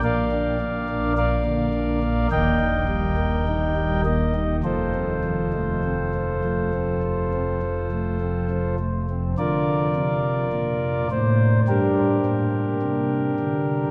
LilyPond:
<<
  \new Staff \with { instrumentName = "Pipe organ" } { \time 4/4 \key bes \major \tempo 4 = 52 <bes' d'' f''>4 <bes' d'' f''>4 <bes' ees'' g''>4. ees''8 | <f' a' c''>2.~ <f' a' c''>8 r8 | <f' bes' d''>4. c''8 <d' g' bes'>2 | }
  \new Staff \with { instrumentName = "Pipe organ" } { \clef bass \time 4/4 \key bes \major << { bes,16 d'16 bes16 d'16 bes16 d16 d'16 bes16 ees,16 ees'16 g16 bes16 ees'16 g16 bes16 ees'16 | f,16 c'16 f16 a16 c'16 f16 a16 c'16 c16 c'16 f16 a16 c'16 f16 a16 c'16 | d8 c8 bes,8 a,8 g,8 bes,8 c8 d8 | } \\ { bes,,2 ees,,2 | f,,1 | r1 | } >> }
>>